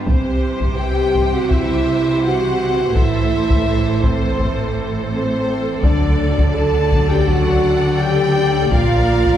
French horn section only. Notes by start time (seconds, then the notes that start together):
0.08 C4
0.79 G4
1.34 F#4
1.53 E4
2.25 F#4
2.96 E4
4.03 C4
5.12 C4
5.83 D4
6.54 A4
7.09 G4
7.27 F#4
8.00 G4
8.72 F4